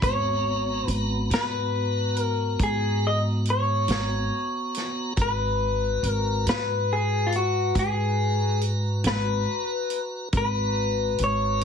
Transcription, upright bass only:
0.02 G#1
0.87 G#1
1.30 G#2
2.60 G#2
3.88 G#1
5.17 G#1
6.03 G#1
6.46 G#2
7.75 G#2
9.04 G#1
10.33 G#1
11.19 G#1

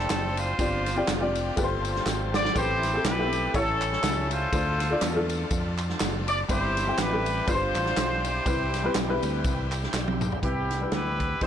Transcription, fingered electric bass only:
0.10 F#1
0.59 G1
1.08 F1
1.57 G1
2.06 G#1
2.56 A1
3.05 B1
3.54 A1
4.03 C#2
4.53 D2
5.02 E2
5.51 F2
6.01 F#1
6.49 G1
6.98 A1
7.48 G1
7.75 A1
7.97 B1
8.46 C2
8.96 B1
9.23 D2
9.45 C2
9.94 B1
10.43 C2
10.92 D2
11.42 E2

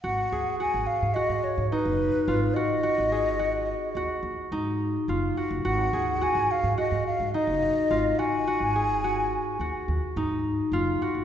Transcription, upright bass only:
0.04 G#1
0.32 D#2
0.74 G#1
1.02 G#2
1.29 G#2
1.58 G#2
1.85 F#1
2.28 G#1
2.98 G#1
3.95 D#2
4.23 D#2
4.52 G#2
5.08 F#1
5.51 F#1
5.65 G#1
5.93 D#2
6.35 G#1
6.64 G#2
6.92 G#2
7.20 G#2
7.47 F#1
7.91 G#1
8.60 G#1
9.60 D#2
9.88 D#2
10.16 G#2
10.72 F#1
11.15 F#1

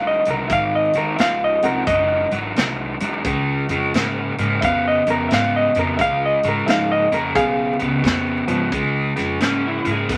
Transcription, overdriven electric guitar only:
Already playing: G#2 F#3
0.27 G#2 F#3
0.50 G#2 D#3
0.95 G#2 D#3
1.18 G#2 F3
1.63 G#2 F3
1.87 G#2 F#3
2.31 G#2 F#3
2.56 G#2 F#3
3.01 G#2 F#3
3.25 C#3 G#3
3.70 C#3 G#3
3.94 C#3 A#3
4.39 C#3 A#3
4.63 C#3 B3
5.07 C#3 B3
5.32 C#3 B3
5.76 C#3 B3
5.99 C#3 G#3
6.44 C#3 G#3
6.68 C#3 A#3
7.12 C#3 A#3
7.36 C#3 B3
7.79 C#3 B3
8.04 C#3 B3
8.47 C#3 B3
8.72 C#3 G#3
9.16 C#3 G#3
9.41 C#3 A#3
9.85 C#3 A#3
10.10 C#3 B3

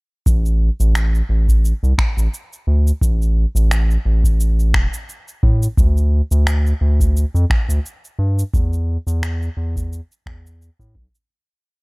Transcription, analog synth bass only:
0.26 A1
0.80 A1
1.29 A1
1.83 C2
2.17 A1
2.67 D2
3.02 A1
3.55 A1
4.05 A1
4.74 E1
5.43 A2
5.77 D2
6.31 D2
6.81 D2
7.34 F2
7.69 D2
8.19 G2
8.54 E2
9.07 E2
9.57 E2
10.26 E2
10.79 A2
10.95 B1

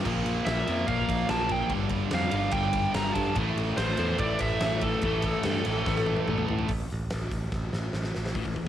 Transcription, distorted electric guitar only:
0.04 A#2 F3 A#3
0.87 A#2 F3 A#3
1.68 G2 D3 G3
2.52 G2 D3 G3
3.36 A2 E3 A3
4.19 A2 E3 A3
5.03 A2 E3 A3
5.86 A2 E3 A3

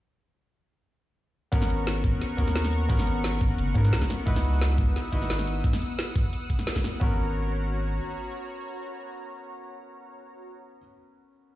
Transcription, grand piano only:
1.52 B3 C#4 F#4 A#4
2.37 B3 C#4 F#4 A#4
2.89 B3 C#4 F#4 A#4
3.74 B3 C#4 F#4 A#4
4.26 D#4 E4 F#4 B4
5.12 D#4 E4 F#4 B4
7.00 B3 C#4 F#4 A#4

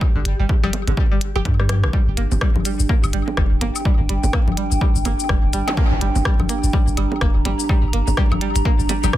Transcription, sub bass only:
0.16 G1
0.25 G1
0.40 G1
0.64 G1
0.88 G1
1.36 G1
1.45 G2
1.84 A#1
2.08 G1
2.17 G1
2.32 G1
2.56 G1
2.80 G1
3.04 G1
3.13 G1
3.37 F1
3.52 D1
3.61 G1
4.00 G1
4.09 G1
4.24 G1
4.48 G1
4.72 G1
4.96 G1
5.05 G1
5.29 F1
5.44 D1
5.53 G1
5.92 G1
6.01 G1
6.16 G1
6.40 G1
6.64 G1
6.88 G1
6.97 G1
7.21 F1
7.36 D1
7.45 G1
7.84 G1
7.93 G1
8.08 G1
8.32 G1
8.56 G1
8.80 G1
9.04 G1

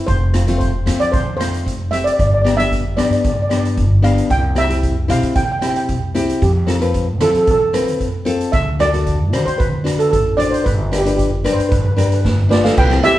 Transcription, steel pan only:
0.07 C5
0.58 C5
1.00 D5
1.12 C5
1.37 C5
1.91 E5
2.04 D5
2.13 D5
2.20 D5
2.27 D5
2.34 D5
2.42 D5
2.57 E5
2.97 D5
3.05 D5
3.13 D5
3.20 D5
3.27 D5
3.34 D5
3.42 D5
3.49 D5
3.58 D5
4.04 F5
4.31 G5
4.58 E5
5.10 F5
5.36 G5
5.45 G5
5.52 G5
5.59 G5
5.67 G5
5.76 G5
6.43 G4
7.21 A4
7.31 A4
7.37 A4
7.43 A4
7.51 A4
7.58 A4
8.52 E5
8.80 D5
9.46 C5
9.58 B4
9.99 A4
10.11 A4
10.37 D5
10.51 C5
10.64 B4
10.98 G4
11.16 G4
11.52 C5
11.69 B4
11.77 B4
11.85 B4
11.92 B4
11.99 B4
12.07 B4
12.14 B4
12.21 B4
12.29 B4
12.51 F4 D5
12.64 A4 F5
12.78 B4 G5
13.04 G4 E5

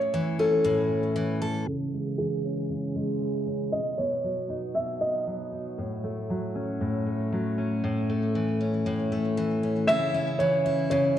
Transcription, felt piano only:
Already playing: C#5
0.39 A4
2.18 G#4
3.72 D#5
3.98 C#5
4.75 E5
5.01 D#5
9.87 E5
10.39 C#5
10.90 C#5

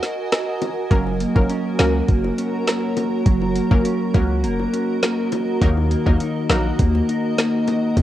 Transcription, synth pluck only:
0.91 F#3 A#3 C#4 A#4
1.36 F#3 A#3 C#4 A#4
1.79 F#3 A#3 C#4 A#4
3.71 F#3 A#3 C#4 A#4
4.14 F#3 A#3 C#4 A#4
5.62 F#3 A#3 D#4 A#4
6.06 F#3 A#3 D#4 A#4
6.50 F#3 A#3 D#4 A#4

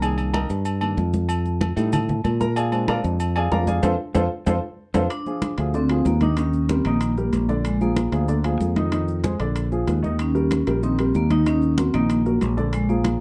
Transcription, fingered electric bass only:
Already playing: C2
0.50 G2
0.97 F2
1.77 A2
2.25 A#2
3.04 F2
3.52 F2
3.83 F2
4.15 F2
4.47 F2
4.95 F2
5.58 D2
6.06 D#2
6.85 A#1
7.33 A#1
8.12 D2
8.60 F2
9.40 A#1
9.88 D#2
10.67 A#1
11.15 D#2
11.94 A#1
12.42 A#1

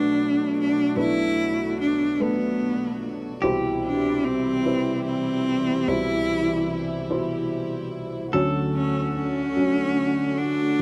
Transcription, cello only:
Already playing: D4
0.59 D4
0.99 E4
1.81 D4
2.23 B3
3.85 D4
4.25 C4
5.06 C4
5.88 E4
8.75 C#4
9.15 C#4
10.38 D4

